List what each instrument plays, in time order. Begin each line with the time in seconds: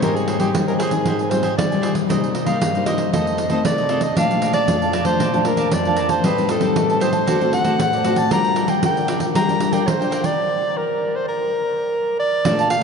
Already playing: nylon-string guitar G3 C4 D#4
0.02 nylon-string guitar G#2, cavaquinho G4 C5 D#5 G#5, soprano saxophone A#4, pandeiro
0.16 soprano saxophone G#4, pandeiro
0.28 cavaquinho G4 C5 D#5 G#5, pandeiro
0.40 nylon-string guitar G3 C4 D#4, soprano saxophone G4, cavaquinho G4 C5 D#5 G#5, pandeiro
0.55 nylon-string guitar D#3 G3 C4 D#4, pandeiro
0.67 soprano saxophone A#4, cavaquinho C5 D#5 G#5, pandeiro
0.78 cavaquinho G4 C5 D#5, soprano saxophone G#4, pandeiro
0.83 cavaquinho G#5
0.91 nylon-string guitar C4 D#4, cavaquinho C5 D#5 G#5, pandeiro
1.05 nylon-string guitar G#2, cavaquinho G4 C5 D#5, pandeiro
1.10 cavaquinho G#5
1.19 cavaquinho C5 D#5 G#5, pandeiro
1.30 nylon-string guitar G3 C4 D#4, soprano saxophone C5, pandeiro
1.43 cavaquinho G4 C5 D#5 G#5, pandeiro
1.57 nylon-string guitar D#3 G3 C4 D#4, soprano saxophone D5, pandeiro
1.71 nylon-string guitar G3 C4 D#4, cavaquinho C5 D#5 G#5, pandeiro
1.81 cavaquinho G4 C5 D#5 G#5, pandeiro
1.93 cavaquinho C5 D#5 G#5, pandeiro
2.09 nylon-string guitar C3 G3 A#3 D#4, cavaquinho D#4 A#4 C5 D#5, pandeiro
2.24 pandeiro
2.34 cavaquinho D#4 A#4 C5 D#5, pandeiro
2.46 nylon-string guitar G3 A#3 D#4, cavaquinho D#4 A#4 C5 D#5, soprano saxophone F5, pandeiro
2.62 nylon-string guitar G2, pandeiro
2.74 nylon-string guitar G3 A#3 D#4, cavaquinho A#4 C5 D#5, pandeiro
2.86 cavaquinho D#4 A#4 C5 D#5, soprano saxophone D#5, pandeiro
2.98 cavaquinho A#4 C5 D#5, pandeiro
3.13 nylon-string guitar F2 D#3 A3 C4, cavaquinho F4 A4 C5 D#5, soprano saxophone D#5, pandeiro
3.26 cavaquinho A4 C5 D#5, pandeiro
3.38 pandeiro
3.50 nylon-string guitar D#3 A3 C4, cavaquinho F4 A4 C5 D#5, pandeiro
3.65 nylon-string guitar C3, soprano saxophone D5, pandeiro
3.78 cavaquinho A4 C5 D#5, pandeiro
3.89 nylon-string guitar D#3 A3 C4, cavaquinho F4 A4 C5 D#5, pandeiro
4.01 cavaquinho A4 C5 D#5, soprano saxophone D#5, pandeiro
4.16 nylon-string guitar A#2 F3 A3 D4, cavaquinho A#4 D5 F5 A5, soprano saxophone F5, pandeiro
4.30 nylon-string guitar F3 A3 D4, pandeiro
4.41 cavaquinho A#4 D5 F5 A5, pandeiro
4.53 cavaquinho A#4 D5 F5 A5, soprano saxophone D5, pandeiro
4.68 nylon-string guitar F2 F3 A3 D4, pandeiro
4.82 cavaquinho D5 F5 A5, pandeiro
4.93 cavaquinho A#4 D5 F5 A5, pandeiro
5.05 nylon-string guitar F3 A3 D4, soprano saxophone C5, cavaquinho D5 F5 A5, pandeiro
5.20 nylon-string guitar A#2, cavaquinho A#4 D5 F5 A5, pandeiro
5.33 nylon-string guitar F3 A3 D4, cavaquinho D5 F5 A5, pandeiro
5.45 nylon-string guitar F3 A3 D4, soprano saxophone A#4, pandeiro
5.57 cavaquinho A#4 D5 F5 A5, pandeiro
5.71 nylon-string guitar F2, soprano saxophone D5, pandeiro
5.85 nylon-string guitar F3 A3 D4, cavaquinho D5 F5 A5, pandeiro
5.96 cavaquinho A#4 D5 F5 A5, pandeiro
6.09 soprano saxophone C5, cavaquinho D5 F5 A5, pandeiro
6.23 nylon-string guitar A2 G3 C4 D#4, cavaquinho G4 C5 D#5 A5, soprano saxophone B4, pandeiro
6.37 nylon-string guitar G3 C4 D#4, pandeiro
6.49 cavaquinho G4 C5 D#5 A5, soprano saxophone A4, pandeiro
6.61 nylon-string guitar G3 C4 D#4, cavaquinho G4 C5 D#5 A5, pandeiro
6.76 nylon-string guitar A2, pandeiro
6.90 cavaquinho C5 D#5 A5, pandeiro
7.00 nylon-string guitar G3 C4 D#4, cavaquinho G4 C5 D#5 A5, soprano saxophone C5, pandeiro
7.12 cavaquinho C5 D#5 A5, pandeiro
7.27 nylon-string guitar D3 A3 C4 F#4, cavaquinho F#4 A4 C5 D5, pandeiro
7.41 nylon-string guitar A3 C4 F#4, cavaquinho A4 C5 D5, pandeiro
7.53 soprano saxophone F#5, pandeiro
7.64 nylon-string guitar A3 C4 F#4, cavaquinho F#4 A4 C5 D5, pandeiro
7.80 nylon-string guitar A2, soprano saxophone F#5, pandeiro
7.93 cavaquinho A4 C5 D5, pandeiro
8.04 nylon-string guitar A3 C4 F#4, cavaquinho F#4 A4 C5 D5, pandeiro
8.16 cavaquinho A4 C5 D5, soprano saxophone A5, pandeiro
8.31 nylon-string guitar G3 D4 F4 A#4, cavaquinho F4 A#4 D5 G5, soprano saxophone A#5, pandeiro
8.44 pandeiro
8.56 cavaquinho F4 A#4 D5 G5, pandeiro
8.68 cavaquinho F4 A#4 D5 G5, soprano saxophone G5, pandeiro
8.83 nylon-string guitar D3 D4 F4 A#4, soprano saxophone G5, pandeiro
8.96 cavaquinho A#4 D5 G5, pandeiro
9.08 cavaquinho F4 A#4 D5 G5, pandeiro
9.19 nylon-string guitar D4 F4 A#4, cavaquinho A#4 D5 G5, pandeiro
9.34 nylon-string guitar G3, cavaquinho F4 A#4 D5 G5, soprano saxophone A#5, pandeiro
9.48 nylon-string guitar D4 F4 A#4, cavaquinho A#4 D5 G5, pandeiro
9.60 nylon-string guitar D4 F4 A#4, pandeiro
9.73 cavaquinho F4 A#4 D5 G5, soprano saxophone G5, pandeiro
9.87 nylon-string guitar D3, soprano saxophone C5, pandeiro
10.00 nylon-string guitar D4 F4 A#4, cavaquinho A#4 D5 G5, pandeiro
10.11 cavaquinho F4 A#4 D5 G5, pandeiro
10.23 cavaquinho A#4 G5, soprano saxophone D5, pandeiro
10.77 soprano saxophone A#4
11.15 soprano saxophone C5
11.28 soprano saxophone A#4
12.19 soprano saxophone D5
12.45 nylon-string guitar A#2 A3 D4 F4, cavaquinho A#4 D5 F5 A5, pandeiro
12.59 cavaquinho D5 F5 A5, pandeiro
12.70 soprano saxophone F5, pandeiro